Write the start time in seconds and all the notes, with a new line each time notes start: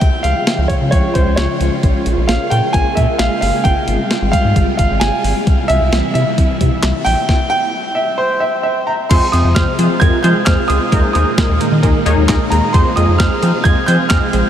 Already playing: G5
0.01 C#2 C#3 F3 G#3 F4, kick, closed hi-hat
0.23 C#2 F5, closed hi-hat
0.47 snare, closed hi-hat
0.58 C#2
0.68 C#5, kick, closed hi-hat
0.81 C#3
0.91 C#2 C#5, kick, closed hi-hat
1.14 C#2 C5, kick, closed hi-hat
1.26 C#2
1.36 C#2 C#5, snare, closed hi-hat
1.60 C#2, closed hi-hat
1.83 A#1 A#3, kick, closed hi-hat
2.06 A#1, closed hi-hat
2.17 A#1
2.27 A#1 F5, snare, closed hi-hat
2.50 A#2 G5, closed hi-hat
2.73 A#1 G#5, kick, closed hi-hat
2.95 A#2 E5, kick, closed hi-hat
3.18 A#1 F5, snare, closed hi-hat
3.41 G1 F5, open hi-hat
3.64 G#1 C3 G3 F4 G5, kick, closed hi-hat
3.88 G#1, closed hi-hat
4.11 snare, closed hi-hat
4.22 G#1
4.32 F5, kick, closed hi-hat
4.45 G#2
4.56 G#1, kick, closed hi-hat
4.77 G#1 F5, kick, closed hi-hat
4.90 G#1
5.00 G#1 G#5, snare, closed hi-hat
5.24 G#1, open hi-hat
5.47 C2 C3 E3 E4, kick, closed hi-hat
5.68 C2 E5, closed hi-hat
5.81 C2
5.92 C2, snare, closed hi-hat
6.14 C3 E5, closed hi-hat
6.38 C2, kick, closed hi-hat
6.61 C3, kick, closed hi-hat
6.83 C2, snare, clap, closed hi-hat
7.05 A#1 G5, open hi-hat
7.29 kick, snare
7.50 G5
7.95 E5
8.18 C5
8.40 E5
8.63 E5
8.87 A#5
9.09 F2 C3 F3 G#3 C4 F4 G#4 C5 C6, kick, closed hi-hat, crash
9.32 F2 G#3 C4 F4 G#4 C5 D#6, closed hi-hat
9.45 F2
9.55 F2 G#3 C4 F4 G#4 C5 F6, kick, snare, closed hi-hat
9.79 F3 G#3 C4 F4 G#4 C5, closed hi-hat
10.00 F2 G#3 C4 F4 G#4 A#4 G#6, kick, closed hi-hat
10.23 F3 G#3 C4 F4 G#4 C5 G6, closed hi-hat
10.45 F2 G#3 C4 F4 G#4 C5 F6, kick, snare, clap, closed hi-hat
10.68 C#2 G#3 C4 F4 G#4 C5 D#6, closed hi-hat
10.92 D#2 A#2 D#3 G#3 A#3 D#4 G#4 A#4, kick, closed hi-hat
11.13 D#2 G#3 A#3 D#4 G#4 A#4 D#6, closed hi-hat
11.38 G#3 A#3 D#4 G#4 A#4, kick, snare, closed hi-hat
11.49 D#2
11.60 G#3 A#3 D#4 G#4 A#4, closed hi-hat
11.72 D#3
11.83 D#2 G#3 A#3 D#4 G#4 A#4, kick, closed hi-hat
12.06 D#2 G#3 A#3 D#4 G#4 C#5, closed hi-hat
12.18 D#2
12.28 D#2 G#3 A#3 D#4 G#4 A#4, kick, snare, clap, closed hi-hat
12.50 D#2 G#3 A#3 D#4 G#4 A#4 A#5, closed hi-hat
12.73 F2 C3 F3 G#3 C4 F4 G#4 C5 C6, kick, closed hi-hat
12.96 F2 G#3 C4 F4 G#4 D#5 D#6, closed hi-hat
13.08 F2
13.18 F2 G#3 C4 F4 G#4 C5 F6, kick, snare, closed hi-hat
13.42 F3 G#3 C4 F4 G#4 C5, closed hi-hat
13.64 F2 G#3 C4 F4 G#4 D#5 G#6, kick, closed hi-hat
13.86 F3 G#3 C4 F4 G#4 C5 G6, closed hi-hat
14.09 F2 G#3 C4 F4 G#4 D#5 F6, kick, snare, clap, closed hi-hat
14.33 A#1 G#3 C4 F4 G#4 C5, closed hi-hat